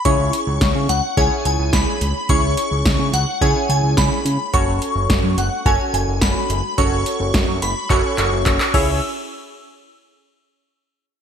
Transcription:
<<
  \new Staff \with { instrumentName = "Synth bell" } { \time 4/4 \key cis \minor \tempo 4 = 107 cis'''4. fis''8 gis''8 gis''8 b''4 | cis'''4. fis''8 gis''8 gis''8 b''4 | cis'''4. fis''8 gis''8 gis''8 b''4 | cis'''4. b''8 cis'''4. e'''8 |
r1 | }
  \new Staff \with { instrumentName = "Analog polysynth" } { \time 4/4 \key cis \minor <cis' e' gis' cis''>4. r8 <cis' e' gis' cis''>4. r8 | <cis' e' gis' cis''>4. r8 <cis' e' gis' cis''>4. r8 | <cis' fis' a' cis''>4. r8 <cis' fis' a' cis''>4. r8 | <cis' fis' a' cis''>4. r8 <cis' fis' a' cis''>4. <cis' e' gis' cis''>8 |
r1 | }
  \new Staff \with { instrumentName = "Analog synth bass" } { \clef bass \time 4/4 \key cis \minor cis,16 cis,16 r16 cis,16 cis,16 cis16 cis,16 r16 cis,16 r16 cis,16 cis,16 cis,16 r16 cis,16 r16 | cis,16 cis,16 r16 cis,16 cis,16 cis16 cis,16 r16 cis,16 r16 cis,16 cis,16 cis,16 r16 cis16 r16 | fis,,16 fis,,16 r16 fis,,16 fis,,16 fis,16 fis,,16 r16 fis,,16 r16 fis,,16 fis,,16 fis,,16 r16 fis,,16 r16 | fis,,16 fis,,16 r16 fis,,16 fis,,16 fis,16 fis,,16 r16 fis,,16 r16 fis,,16 fis,,16 fis,,16 r16 cis,8 |
r1 | }
  \new DrumStaff \with { instrumentName = "Drums" } \drummode { \time 4/4 <hh bd>8 hh8 <hh bd sn>8 hh8 <hh bd>8 hh8 <hh bd sn>8 hh8 | <hh bd>8 hh8 <hh bd sn>8 hh8 <hh bd>8 hh8 <hh bd sn>8 hh8 | <hh bd>8 hh8 <hh bd sn>8 hh8 <hh bd>8 hh8 <hh bd sn>8 hh8 | <hh bd>8 hh8 <hh bd sn>8 hh8 <hc hh bd>8 <hc hh>8 <hc hh bd>16 hc16 <cymc bd>8 |
r4 r4 r4 r4 | }
>>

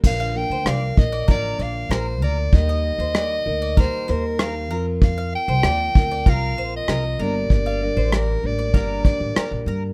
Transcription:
<<
  \new Staff \with { instrumentName = "Soprano saxophone" } { \time 4/4 \key bes \major \tempo 4 = 96 f''8 g''8 f''8 ees''8 d''8 f''8 c''8 d''8 | ees''2 c''8 bes'8 f''8 r8 | f''8 g''4. f''8. ees''8. d''8 | d''4 bes'8 d''8 d''4. r8 | }
  \new Staff \with { instrumentName = "Mandolin" } { \time 4/4 \key bes \major r16 f''16 r16 c''16 d''16 r8 d''16 bes'8 d''16 r16 bes'16 r16 bes'16 r16 | r16 ees''16 r16 c''16 d''16 r8 d''16 bes'8 c''16 r16 bes'16 r16 bes'16 r16 | r16 f''16 r16 c''16 d''16 r8 d''16 bes'8 c''16 r16 bes'16 r16 bes'16 r16 | r16 f''16 r16 c''16 d''16 r8 d''16 bes'8 d''16 r16 bes'16 r16 bes'16 r16 | }
  \new Staff \with { instrumentName = "Steel-string acoustic guitar" } { \time 4/4 \key bes \major <bes, d f bes d' bes'>8 <f bes d' bes'>8 <f bes d' bes'>8 <f bes bes'>8 <d f bes d' bes'>4 <f bes d' bes'>4 | <ees g bes ees' bes'>4 <g bes ees' bes'>8 <bes ees' bes'>8 <ees g bes ees' bes'>4 <g bes ees' bes'>8 <f c' f' bes'>8~ | <f c' f' bes'>4 <f c' f' bes'>8 <c' f' bes'>8 <f c' f' bes'>4 <f c' f' bes'>8 <g, d g bes d' bes'>8~ | <g, d g bes d' bes'>8 <g bes d' bes'>8 <g bes d' bes'>8 <g bes d' bes'>8 <g, d g bes d' bes'>4 <g bes d' bes'>4 | }
  \new Staff \with { instrumentName = "Upright bass" } { \clef bass \time 4/4 \key bes \major bes,,8. d,16 c,8 bes,,8 a,,8 bes,,8 bes,,8 d,8 | ees,8. ees,8. d,8. r16 ees,4 f,8~ | f,8. c,16 ees,8 d,8 c,8 bes,,8 c,8 g,,8 | g,,8. a,,8. a,,8 g,,8 r16 a,,16 r16 bes,,16 g,8 | }
  \new DrumStaff \with { instrumentName = "Drums" } \drummode { \time 4/4 <cymc bd>4 ss8 bd8 bd8 ss8 ss4 | bd4 ss4 bd8 ss8 ss4 | bd4 ss8 bd8 bd4 ss4 | bd4 ss4 bd8 bd8 ss4 | }
>>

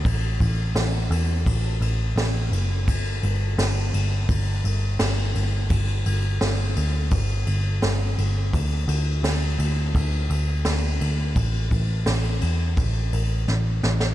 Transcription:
<<
  \new Staff \with { instrumentName = "Picked electric bass" } { \clef bass \time 4/4 \key a \dorian \tempo 4 = 85 a,,8 a,,8 a,,8 e,8 a,,8 a,,8 a,,8 fis,,8 | g,,8 g,,8 g,,8 g,,8 g,,8 g,,8 g,,8 g,,8 | g,,8 g,,8 g,,8 d,8 g,,8 g,,8 g,,8 g,,8 | d,8 d,8 d,8 d,8 d,8 d,8 d,8 d,8 |
a,,8 a,,8 a,,8 e,8 a,,8 a,,8 a,,8 a,,8 | }
  \new DrumStaff \with { instrumentName = "Drums" } \drummode { \time 4/4 <bd cymr>8 <bd cymr>8 <cymr sn>8 cymr8 <bd cymr>8 cymr8 <cymr sn>8 cymr8 | <bd cymr>8 cymr8 <cymr sn>8 cymr8 <bd cymr>8 cymr8 <cymr sn>8 cymr8 | <bd cymr>8 cymr8 <cymr sn>8 cymr8 <bd cymr>8 cymr8 <cymr sn>8 cymr8 | <bd cymr>8 cymr8 <cymr sn>8 cymr8 <bd cymr>8 cymr8 <cymr sn>8 cymr8 |
<bd cymr>8 <bd cymr>8 <cymr sn>8 cymr8 <bd cymr>8 cymr8 sn8 sn16 sn16 | }
>>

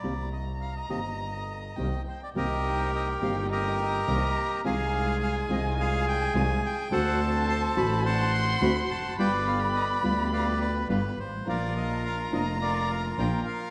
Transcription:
<<
  \new Staff \with { instrumentName = "Violin" } { \time 4/4 \key c \minor \tempo 4 = 105 bes''2. g''8 g''8 | g''2 bes''2 | aes''1 | a''2 c'''2 |
b''2.~ b''8 r8 | bes''1 | }
  \new Staff \with { instrumentName = "Bandoneon" } { \time 4/4 \key c \minor << { d''8 ees''8 f''16 ees''16 ees''2 c''16 d''16 | ees''4 ees''8 f''8 ees''2 | f''4 f''8 ees''8 f''8 g''8 aes''8 g''8 | fis''8 a''8 c'''8 b''8 a''8 c'''8 b''8 a''8 |
g''8 f''8 ees''8 d''8 f''8 d''8 b'8 c''8 | d''8 ees''8 f''8 ees''8 d''8 f''8 g''8 f''8 | } \\ { r1 | <g' bes'>2 <g' bes'>2 | aes'2 aes'2 | <a' c''>2 <c'' fis''>2 |
<b' d''>2 <b' d''>2 | <f' bes'>2 <f' bes'>2 | } >> }
  \new Staff \with { instrumentName = "String section" } { \time 4/4 \key c \minor r1 | <bes c' ees'>4. <bes c' ees'>4. <bes c' ees'>8 r8 | <aes ees' f'>4. <aes ees' f'>4. <aes ees' f'>8 r8 | <c' d' fis'>4. <c' d' fis'>4. <c' d' fis'>8 r8 |
<b f' g'>4. <b f' g'>4. <b f' g'>8 r8 | <bes d' f'>4. <bes d' f'>4. <bes d' f'>8 r8 | }
  \new Staff \with { instrumentName = "Nylon-string guitar" } { \time 4/4 \key c \minor <c ees bes c' g'>8 r4 <c ees bes c' g'>8 r4 <c ees bes c' g'>8 r8 | <c ees bes c' g'>8 r4 <c ees bes c' g'>8 r4 <c ees bes c' g'>8 r8 | <c ees aes c' f'>8 r4 <c ees aes c' f'>8 r4 <c ees aes c' f'>8 r8 | <d a c' fis'>8 r4 <d a c' fis'>8 r4 <d a c' fis'>8 r8 |
<g b f'>8 r4 <g b f'>8 r4 <g b f'>8 r8 | <f bes d' f'>8 r4 <f bes d' f'>8 r4 <f bes d' f'>8 r8 | }
  \new Staff \with { instrumentName = "Double bass" } { \clef bass \time 4/4 \key c \minor c,4. g,,4. c,8 r8 | c,4. g,,4. c,8 r8 | c,4. c,4. c,8 r8 | d,4. a,,4. d,8 f,,8 |
g,,4. d,4. g,,8 aes,,8 | bes,,4. f,,4. bes,,8 r8 | }
>>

